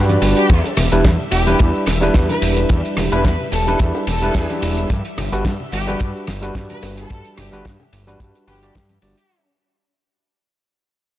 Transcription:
Already playing: analog synth bass G2, tine electric piano G3 D4 F#4 B4, string machine D4 D5
0.09 closed hi-hat, high conga
0.22 analog synth bass G1, open hi-hat, ride, shaker
0.37 violin section G4, closed hi-hat, shaker
0.49 analog synth bass E2, string machine G3 E5, kick, closed hi-hat, ride, high conga, shaker
0.64 closed hi-hat, high bongo
0.77 analog synth bass E1, cross-stick, open hi-hat, ride, low conga, shaker
0.92 analog synth bass E1, tine electric piano G3 D4 E4 B4, closed hi-hat, shaker
1.04 analog synth bass E2, kick, snare, closed hi-hat, ride, high bongo, high conga, shaker
1.19 low conga
1.31 analog synth bass E1, violin section G4, open hi-hat, ride, shaker
1.47 tine electric piano G3 D4 E4 B4, closed hi-hat, high conga, shaker
1.59 analog synth bass E2, kick, closed hi-hat, ride, high bongo, shaker
1.75 shaker
1.86 analog synth bass E1, cross-stick, snare, open hi-hat, ride, high conga, shaker
2.01 tine electric piano G3 D4 E4 B4, closed hi-hat, high bongo, shaker
2.14 analog synth bass E2, kick, snare, closed hi-hat, ride, shaker
2.29 violin section B4, closed hi-hat, high conga, low conga
2.42 analog synth bass E1, open hi-hat, ride, shaker
2.56 closed hi-hat, high bongo, shaker
2.69 analog synth bass E2, kick, closed hi-hat, ride, high conga, shaker
2.85 closed hi-hat
2.97 analog synth bass E1, cross-stick, open hi-hat, ride, high bongo, low conga, shaker
3.12 analog synth bass E1, tine electric piano G3 D4 E4 B4, violin section B4, closed hi-hat, shaker
3.25 analog synth bass E2, violin section B4, kick, snare, closed hi-hat, ride, high conga, shaker
3.40 low conga
3.52 analog synth bass E1, violin section A4, open hi-hat, ride, high bongo, shaker
3.67 tine electric piano G3 D4 E4 B4, closed hi-hat, high conga, shaker
3.79 analog synth bass E2, kick, closed hi-hat, ride, shaker
3.95 high bongo, shaker
4.07 analog synth bass E1, violin section A4, open hi-hat, ride, high conga, shaker
4.22 tine electric piano G3 D4 E4 B4, closed hi-hat, shaker
4.34 analog synth bass E2, kick, snare, closed hi-hat, ride, shaker
4.50 closed hi-hat, high bongo, high conga
4.62 analog synth bass E1, open hi-hat, ride, shaker
4.77 closed hi-hat, shaker
4.90 analog synth bass G2, kick, closed hi-hat, ride, high bongo, high conga, shaker
5.05 closed hi-hat
5.17 analog synth bass G1, cross-stick, open hi-hat, ride, low conga, shaker
5.32 analog synth bass G1, tine electric piano G3 D4 F#4 B4, closed hi-hat, shaker
5.45 analog synth bass G2, kick, snare, closed hi-hat, ride, high bongo, high conga, shaker
5.60 low conga
5.72 analog synth bass G1, violin section G4, open hi-hat, ride, shaker
5.87 tine electric piano G3 D4 F#4 B4, closed hi-hat, high bongo, high conga, shaker
5.99 analog synth bass G2, kick, closed hi-hat, ride, shaker
6.15 shaker
6.27 analog synth bass G1, cross-stick, snare, open hi-hat, ride, high conga, shaker
6.42 tine electric piano G3 D4 F#4 B4, closed hi-hat, high bongo, shaker
6.55 analog synth bass G2, kick, snare, closed hi-hat, ride, shaker
6.70 violin section B4, closed hi-hat, high conga, low conga
6.82 analog synth bass G1, open hi-hat, ride, high bongo, shaker
6.97 violin section A4, closed hi-hat, shaker
7.10 analog synth bass G2, kick, closed hi-hat, ride, high conga, shaker
7.25 closed hi-hat, shaker
7.37 analog synth bass G1, violin section G4, cross-stick, open hi-hat, ride, high bongo, low conga, shaker
7.52 analog synth bass G1, tine electric piano G3 D4 F#4 B4, closed hi-hat, shaker
7.65 analog synth bass G2, kick, snare, closed hi-hat, ride, high conga, shaker
7.80 high bongo, low conga
7.93 analog synth bass G1, open hi-hat, ride, shaker
8.07 tine electric piano G3 D4 F#4 B4, closed hi-hat, high conga, shaker
8.20 analog synth bass G2, kick, closed hi-hat, ride, shaker
8.35 closed hi-hat, high bongo, shaker
8.47 analog synth bass G1, tine electric piano G3 D4 F#4 B4, violin section G4, open hi-hat, ride, high conga, shaker
8.62 tine electric piano G3 D4 F#4 D5, closed hi-hat, shaker
8.75 analog synth bass G2, kick, snare, closed hi-hat, ride, high bongo, shaker
8.89 closed hi-hat, high conga, shaker
9.02 analog synth bass G1, tine electric piano G3 D4 F#4 D5, open hi-hat, ride, shaker
9.17 violin section G4, closed hi-hat, shaker

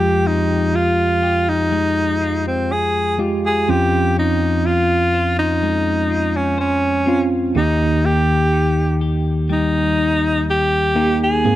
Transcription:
Already playing: tine electric piano F2 G#3 F4 G4, clean electric guitar F3 G4, alto saxophone G4
0.25 clean electric guitar C4, alto saxophone D#4
0.74 clean electric guitar F4, alto saxophone F4
1.23 clean electric guitar G4
1.49 alto saxophone D#4
1.72 clean electric guitar G#3
2.21 clean electric guitar F4
2.47 alto saxophone C4
2.72 alto saxophone G#4
3.19 tine electric piano G#3 F4 G4, clean electric guitar F4
3.46 alto saxophone G#4
3.68 tine electric piano F2 C4 C#4 F4, clean electric guitar F3, alto saxophone G4
4.18 clean electric guitar C#4, alto saxophone D#4
4.66 alto saxophone F4, clean electric guitar F4
5.14 clean electric guitar C5
5.39 alto saxophone D#4
5.63 clean electric guitar G#3
6.10 clean electric guitar F4
6.36 alto saxophone C#4
6.58 alto saxophone C#4, clean electric guitar C5
7.06 tine electric piano C4 C#4 F4, clean electric guitar F4
7.55 tine electric piano D#2 D#3 A#3 D#4 G4, clean electric guitar D#3, alto saxophone D#4
8.05 clean electric guitar A#3, alto saxophone G4
8.53 clean electric guitar D#4
9.01 clean electric guitar G4
9.49 clean electric guitar G3, alto saxophone D#4
9.99 clean electric guitar D#4
10.50 alto saxophone G4
10.95 tine electric piano A#3 D#4 G4, clean electric guitar D#4
11.24 alto saxophone G#4
11.45 tine electric piano G#2 A#3 C4 G#4, clean electric guitar G#3

